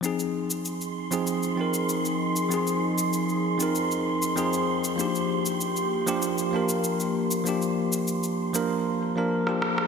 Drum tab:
SH |xx-xxx-xxx-xxx-x|xx-xxx-xxx-xxx-x|xx-xxx-xxx-xxx-x|xx-xxx-x--------|
SD |----------------|----------------|----------------|-------------rrr|